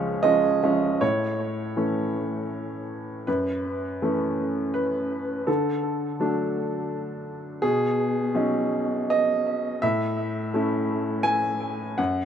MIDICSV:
0, 0, Header, 1, 2, 480
1, 0, Start_track
1, 0, Key_signature, 3, "major"
1, 0, Tempo, 788436
1, 619, Time_signature, 3, 2, 24, 8
1, 619, Tempo, 755668
1, 1579, Tempo, 738916
1, 3019, Tempo, 719424
1, 5419, Tempo, 762389
1, 5899, Tempo, 711744
1, 7339, Tempo, 742574
1, 7992, End_track
2, 0, Start_track
2, 0, Title_t, "Upright piano"
2, 0, Program_c, 0, 0
2, 0, Control_c, 0, 64, 127
2, 0, Note_on_c, 0, 37, 59
2, 0, Note_on_c, 0, 49, 64
2, 0, Note_on_c, 0, 53, 47
2, 0, Note_on_c, 0, 56, 46
2, 0, Note_on_c, 0, 61, 52
2, 0, Note_on_c, 0, 65, 53
2, 0, Note_on_c, 0, 73, 70
2, 121, Note_off_c, 0, 53, 0
2, 122, Note_off_c, 0, 56, 0
2, 123, Note_off_c, 0, 61, 0
2, 138, Note_on_c, 0, 75, 87
2, 145, Note_on_c, 0, 56, 48
2, 147, Note_on_c, 0, 53, 52
2, 149, Note_on_c, 0, 61, 55
2, 361, Note_off_c, 0, 56, 0
2, 362, Note_off_c, 0, 53, 0
2, 363, Note_off_c, 0, 65, 0
2, 364, Note_off_c, 0, 61, 0
2, 380, Note_on_c, 0, 53, 50
2, 384, Note_off_c, 0, 73, 0
2, 387, Note_on_c, 0, 56, 47
2, 387, Note_on_c, 0, 61, 51
2, 593, Note_off_c, 0, 53, 0
2, 597, Note_off_c, 0, 56, 0
2, 597, Note_off_c, 0, 61, 0
2, 614, Note_on_c, 0, 73, 76
2, 617, Note_off_c, 0, 75, 0
2, 617, Note_on_c, 0, 45, 53
2, 628, Control_c, 0, 64, 0
2, 631, Note_off_c, 0, 49, 0
2, 633, Note_off_c, 0, 37, 0
2, 749, Control_c, 0, 64, 127
2, 1084, Note_off_c, 0, 45, 0
2, 1093, Note_on_c, 0, 52, 40
2, 1098, Note_on_c, 0, 57, 41
2, 1098, Note_on_c, 0, 61, 45
2, 2033, Note_off_c, 0, 52, 0
2, 2036, Note_off_c, 0, 57, 0
2, 2036, Note_off_c, 0, 61, 0
2, 2060, Note_off_c, 0, 73, 0
2, 2062, Note_on_c, 0, 71, 74
2, 2066, Note_on_c, 0, 42, 54
2, 2072, Control_c, 0, 64, 0
2, 2175, Control_c, 0, 64, 127
2, 2528, Note_off_c, 0, 42, 0
2, 2549, Note_on_c, 0, 52, 43
2, 2550, Note_on_c, 0, 57, 44
2, 2554, Note_on_c, 0, 61, 45
2, 3005, Note_off_c, 0, 71, 0
2, 3015, Note_on_c, 0, 71, 76
2, 3484, Note_off_c, 0, 52, 0
2, 3484, Note_off_c, 0, 57, 0
2, 3487, Note_off_c, 0, 61, 0
2, 3502, Note_on_c, 0, 69, 60
2, 3504, Note_off_c, 0, 71, 0
2, 3507, Note_on_c, 0, 50, 52
2, 3519, Control_c, 0, 64, 0
2, 3639, Control_c, 0, 64, 127
2, 3968, Note_off_c, 0, 50, 0
2, 3987, Note_on_c, 0, 54, 39
2, 3992, Note_on_c, 0, 57, 41
2, 3994, Note_on_c, 0, 62, 47
2, 4915, Note_off_c, 0, 54, 0
2, 4918, Note_off_c, 0, 57, 0
2, 4919, Note_off_c, 0, 62, 0
2, 4937, Note_off_c, 0, 69, 0
2, 4937, Note_on_c, 0, 68, 82
2, 4943, Note_on_c, 0, 47, 55
2, 4951, Control_c, 0, 64, 0
2, 5076, Control_c, 0, 64, 127
2, 5408, Note_off_c, 0, 47, 0
2, 5422, Note_on_c, 0, 61, 44
2, 5425, Note_on_c, 0, 54, 45
2, 5428, Note_on_c, 0, 63, 51
2, 5897, Note_on_c, 0, 75, 82
2, 5899, Note_off_c, 0, 68, 0
2, 6360, Note_off_c, 0, 61, 0
2, 6362, Note_off_c, 0, 54, 0
2, 6363, Note_off_c, 0, 63, 0
2, 6382, Note_on_c, 0, 76, 86
2, 6385, Note_off_c, 0, 75, 0
2, 6388, Note_on_c, 0, 45, 63
2, 6398, Control_c, 0, 64, 0
2, 6491, Control_c, 0, 64, 127
2, 6845, Note_off_c, 0, 45, 0
2, 6866, Note_on_c, 0, 57, 46
2, 6871, Note_on_c, 0, 61, 47
2, 6875, Note_on_c, 0, 64, 49
2, 7334, Note_on_c, 0, 80, 100
2, 7337, Note_off_c, 0, 76, 0
2, 7797, Note_off_c, 0, 57, 0
2, 7800, Note_off_c, 0, 61, 0
2, 7801, Note_off_c, 0, 64, 0
2, 7816, Note_on_c, 0, 78, 71
2, 7817, Note_off_c, 0, 80, 0
2, 7820, Note_on_c, 0, 42, 61
2, 7831, Control_c, 0, 64, 0
2, 7952, Control_c, 0, 64, 127
2, 7992, Note_off_c, 0, 42, 0
2, 7992, Note_off_c, 0, 78, 0
2, 7992, End_track
0, 0, End_of_file